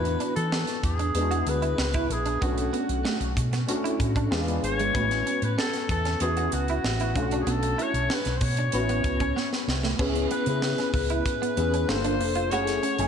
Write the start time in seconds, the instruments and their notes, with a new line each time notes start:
Already playing: fingered electric bass E2, grand piano E3 B3 D4 F#4, alto saxophone B4
0.04 muted clean electric guitar stroke, closed hi-hat
0.20 clean electric guitar D4, closed hi-hat
0.36 fingered electric bass E3, alto saxophone A4, closed hi-hat
0.52 clean electric guitar B3, snare
0.67 muted clean electric guitar stroke, snare, closed hi-hat
0.83 fingered electric bass E2, alto saxophone G#4, kick, closed hi-hat
0.99 clean electric guitar D4, closed hi-hat
1.14 fingered electric bass E2, grand piano G#3 B3 D4 E4, closed hi-hat
1.22 grand piano F#4
1.31 clean electric guitar F#4, closed hi-hat
1.46 fingered electric bass D2, alto saxophone B4, muted clean electric guitar stroke, closed hi-hat
1.62 clean electric guitar E4, closed hi-hat
1.78 fingered electric bass C#2, snare
1.94 clean electric guitar E4, kick, closed hi-hat
2.10 fingered electric bass A#1, alto saxophone G#4, muted clean electric guitar stroke, closed hi-hat
2.26 clean electric guitar D4, closed hi-hat
2.42 fingered electric bass B1, grand piano A3 C#4 D4 F#4, clean electric guitar B3, alto saxophone F#4, kick, closed hi-hat
2.57 muted clean electric guitar stroke, closed hi-hat
2.73 clean electric guitar B3, closed hi-hat
2.89 fingered electric bass B1, closed hi-hat
3.05 clean electric guitar A3, snare
3.20 fingered electric bass B1, muted clean electric guitar stroke, closed hi-hat
3.37 fingered electric bass B2, kick, closed hi-hat
3.53 clean electric guitar B3, snare, closed hi-hat
3.67 grand piano A3 C#4 D4 F#4, closed hi-hat
3.84 clean electric guitar E4, closed hi-hat
4.00 fingered electric bass A2, muted clean electric guitar stroke, kick, closed hi-hat
4.16 clean electric guitar D4, kick, closed hi-hat
4.31 fingered electric bass E2, grand piano G#3 B3 D4 F4, clean electric guitar B3, snare
4.48 closed hi-hat
4.63 fingered electric bass G#1, alto saxophone C#5, muted clean electric guitar stroke, closed hi-hat
4.79 clean electric guitar G#3, closed hi-hat
4.94 fingered electric bass A1, clean electric guitar A3, grand piano B3 C#4 E4 F#4, kick, closed hi-hat
5.11 muted clean electric guitar stroke, snare, closed hi-hat
5.26 clean electric guitar C#4, closed hi-hat
5.42 fingered electric bass A2, alto saxophone B4, closed hi-hat
5.58 clean electric guitar B3, alto saxophone A4, snare
5.74 muted clean electric guitar stroke, snare, closed hi-hat
5.89 fingered electric bass E2, alto saxophone A4, kick, closed hi-hat
6.05 clean electric guitar C#4, snare, closed hi-hat
6.20 fingered electric bass E2, grand piano B3 C#4 E4 F#4, alto saxophone G#4, closed hi-hat
6.37 clean electric guitar F#4, closed hi-hat
6.52 fingered electric bass C#2, alto saxophone F#4, muted clean electric guitar stroke, closed hi-hat
6.68 clean electric guitar E4, closed hi-hat
6.84 fingered electric bass A1, snare
7.00 clean electric guitar E4, closed hi-hat
7.15 fingered electric bass B1, grand piano A3 C#4 D4 F4, muted clean electric guitar stroke, kick, closed hi-hat
7.22 grand piano F#4
7.31 clean electric guitar D4, closed hi-hat
7.42 alto saxophone G#4
7.47 fingered electric bass B1, clean electric guitar B3, closed hi-hat
7.51 alto saxophone A4
7.63 muted clean electric guitar stroke, closed hi-hat
7.78 clean electric guitar E4, alto saxophone C#5, closed hi-hat
7.94 fingered electric bass B1, closed hi-hat
8.10 clean electric guitar D4, snare
8.14 alto saxophone B4
8.25 fingered electric bass B1, muted clean electric guitar stroke, snare, closed hi-hat
8.37 alto saxophone C5
8.41 fingered electric bass B2, alto saxophone C#5, kick, open hi-hat
8.57 clean electric guitar D4, closed hi-hat
8.72 fingered electric bass A1, grand piano B3 C#4 E4 F#4, closed hi-hat
8.89 clean electric guitar B3, closed hi-hat
9.04 fingered electric bass C#2, muted clean electric guitar stroke, kick, closed hi-hat
9.20 clean electric guitar C#4, kick, closed hi-hat
9.36 clean electric guitar B3, snare
9.53 snare
9.68 fingered electric bass C2, muted clean electric guitar stroke, snare
9.83 clean electric guitar A3, snare
9.99 fingered electric bass C#2, grand piano B3 C#4 E4 G#4, clean electric guitar C#4, kick, crash
10.15 muted clean electric guitar stroke, closed hi-hat
10.31 clean electric guitar B3, alto saxophone B4, closed hi-hat
10.46 fingered electric bass C#3, grand piano B3 C#4 E4 G#4, closed hi-hat
10.62 snare
10.78 clean electric guitar C#4, snare, closed hi-hat
10.93 fingered electric bass C#2, alto saxophone B4, muted clean electric guitar stroke, kick, open hi-hat
11.10 clean electric guitar E4, closed hi-hat
11.26 kick, closed hi-hat
11.42 clean electric guitar B3, closed hi-hat
11.57 fingered electric bass E2, grand piano B3 C#4 E4 G#4, muted clean electric guitar stroke, closed hi-hat
11.74 clean electric guitar C#4, closed hi-hat
11.88 fingered electric bass G1, grand piano A#3 D4 F4 A4, alto saxophone C5, snare
12.04 clean electric guitar D4, closed hi-hat
12.20 fingered electric bass F1, muted clean electric guitar stroke, open hi-hat
12.35 clean electric guitar F4, closed hi-hat
12.51 fingered electric bass F#1, grand piano A3 C#4 E4 G#4, clean electric guitar F#4, alto saxophone C#5, closed hi-hat
12.67 muted clean electric guitar stroke, snare, closed hi-hat
12.83 clean electric guitar C#4, closed hi-hat
12.98 fingered electric bass F#1, grand piano A3 C#4 E4 G#5, closed hi-hat